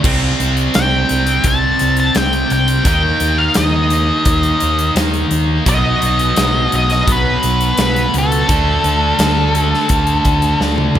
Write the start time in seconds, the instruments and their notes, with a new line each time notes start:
0.03 fingered electric bass C2, distorted electric guitar C3 G3 C4, kick, crash
0.40 fingered electric bass C2, closed hi-hat
0.57 closed hi-hat
0.74 fingered electric bass C2, lead electric guitar G5, snare, closed hi-hat
1.09 fingered electric bass C2, closed hi-hat
1.27 closed hi-hat
1.44 fingered electric bass C2, lead electric guitar A5, kick, closed hi-hat
1.79 fingered electric bass C2, closed hi-hat
1.97 lead electric guitar A5, closed hi-hat
2.15 fingered electric bass C2, lead electric guitar G5, snare, closed hi-hat
2.33 closed hi-hat
2.50 fingered electric bass C2, lead electric guitar G5, closed hi-hat
2.68 closed hi-hat
2.85 fingered electric bass D#2, distorted electric guitar D#3 A#3 D#4, lead electric guitar G5, kick, closed hi-hat
3.20 fingered electric bass D#2, closed hi-hat
3.38 lead electric guitar F5
3.54 fingered electric bass D#2, lead electric guitar D#5, snare, closed hi-hat
3.90 closed hi-hat
4.25 fingered electric bass D#2, kick, closed hi-hat
4.43 closed hi-hat
4.60 fingered electric bass D#2, closed hi-hat
4.79 closed hi-hat
4.95 fingered electric bass D#2, snare, closed hi-hat
5.14 closed hi-hat
5.31 fingered electric bass D#2, closed hi-hat
5.66 fingered electric bass B1, distorted electric guitar B2 F#3 B3, lead electric guitar D#5, kick, closed hi-hat
6.02 fingered electric bass B1, closed hi-hat
6.19 closed hi-hat
6.36 fingered electric bass B1, snare, closed hi-hat
6.72 fingered electric bass B1, lead electric guitar D#5, closed hi-hat
6.90 snare, closed hi-hat
7.08 fingered electric bass B1, kick, closed hi-hat
7.12 lead electric guitar B4
7.43 fingered electric bass B1, closed hi-hat
7.61 closed hi-hat
7.78 fingered electric bass B1, snare, closed hi-hat
7.82 lead electric guitar B4
7.96 closed hi-hat
8.14 fingered electric bass C#2, closed hi-hat
8.18 lead electric guitar A4
8.32 closed hi-hat
8.49 fingered electric bass D2, distorted electric guitar D3 A3 D4, kick, closed hi-hat
8.84 fingered electric bass D2, closed hi-hat
9.19 fingered electric bass D2, snare, closed hi-hat
9.55 closed hi-hat
9.74 snare
9.89 fingered electric bass D2, kick, closed hi-hat
10.07 closed hi-hat
10.25 fingered electric bass D2, kick, closed hi-hat
10.42 closed hi-hat
10.61 fingered electric bass D2, snare
10.78 high tom
10.95 fingered electric bass D2, mid tom